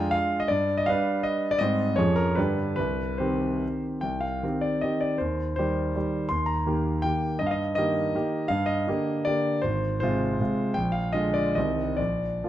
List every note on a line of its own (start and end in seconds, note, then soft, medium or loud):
0.00 0.16 F2 medium
0.00 0.46 G#3 soft
0.00 0.46 D4 soft
0.00 0.46 F4 soft
0.00 0.13 G5 medium
0.00 0.16 G#5 medium
0.00 0.16 A#5 medium
0.11 0.40 F5 medium
0.40 0.49 D#5 medium
0.48 0.87 G2 soft
0.48 0.77 D5 medium
0.78 0.87 D#5 medium
0.86 1.57 G3 soft
0.86 1.57 D4 soft
0.86 1.57 B4 medium
0.86 1.24 F5 medium
1.23 1.51 D#5 medium
1.51 1.60 D5 medium
1.59 1.96 G#2 soft
1.59 1.94 G3 soft
1.59 1.94 C4 soft
1.59 1.94 C5 soft
1.59 1.96 D#5 medium
1.96 2.36 F2 medium
1.96 2.33 F3 soft
1.96 2.34 C#4 soft
1.96 2.34 G#4 soft
1.96 2.17 C#5 medium
2.16 2.36 A#4 medium
2.35 2.76 G2 medium
2.35 2.74 D3 soft
2.35 2.74 D4 soft
2.35 2.74 G4 soft
2.35 2.74 B4 medium
2.76 3.18 C2 soft
2.76 3.19 B4 medium
3.18 3.99 D#3 soft
3.18 3.99 C4 soft
3.18 3.99 G4 soft
3.18 3.82 C5 soft
4.01 4.42 C2 soft
4.01 4.22 G5 medium
4.21 4.63 F5 medium
4.43 4.79 D#3 soft
4.43 4.80 C4 soft
4.43 4.80 G4 soft
4.61 4.82 D5 medium
4.81 5.16 D#3 soft
4.81 5.16 C4 soft
4.81 5.17 G4 soft
4.81 5.01 D#5 medium
5.01 5.19 D5 medium
5.18 5.57 D#2 soft
5.18 5.54 C5 soft
5.56 5.92 D#3 soft
5.56 5.92 G3 soft
5.56 5.92 G4 soft
5.56 6.29 C5 medium
5.96 6.27 D#3 soft
5.96 6.27 G3 soft
5.96 6.27 G4 soft
6.29 6.66 D#2 soft
6.29 6.47 C6 medium
6.46 7.04 A#5 medium
6.66 7.01 D#3 soft
6.66 7.01 A#3 soft
6.66 7.01 G4 soft
7.02 7.36 D#3 soft
7.02 7.37 A#3 soft
7.02 7.37 G4 soft
7.02 7.39 G5 medium
7.39 7.76 G2 soft
7.39 7.46 D#5 medium
7.47 7.53 F5 medium
7.51 7.74 D#5 medium
7.75 8.11 D#3 soft
7.75 8.11 A#3 soft
7.75 8.11 G4 soft
7.75 8.49 D#5 medium
8.15 8.46 D#3 soft
8.15 8.47 A#3 soft
8.15 8.47 G4 soft
8.48 8.86 G2 soft
8.48 8.67 F5 medium
8.66 9.26 D#5 medium
8.87 9.23 D3 soft
8.87 9.23 A#3 soft
8.87 9.23 G4 soft
9.25 9.60 D3 soft
9.25 9.60 A#3 soft
9.25 9.60 G4 soft
9.25 9.62 D5 medium
9.62 10.01 G#1 soft
9.62 9.99 C5 medium
10.00 10.37 C3 soft
10.00 10.37 G#3 soft
10.00 10.37 F4 soft
10.00 10.76 C5 medium
10.40 10.73 C3 soft
10.40 10.73 G#3 soft
10.40 10.73 F4 soft
10.74 11.14 A#1 soft
10.74 10.94 G5 medium
10.92 11.13 F5 medium
11.13 11.52 D3 soft
11.13 11.52 G#3 soft
11.13 11.52 F4 soft
11.13 11.34 D#5 medium
11.34 11.55 D5 medium
11.55 11.98 C2 soft
11.55 11.95 D#3 soft
11.55 11.96 G3 soft
11.55 11.96 C4 soft
11.55 11.98 D#5 medium
11.97 12.43 A#1 soft
11.97 12.49 D5 medium
12.44 12.49 F3 soft
12.44 12.49 A#3 soft
12.44 12.49 F4 soft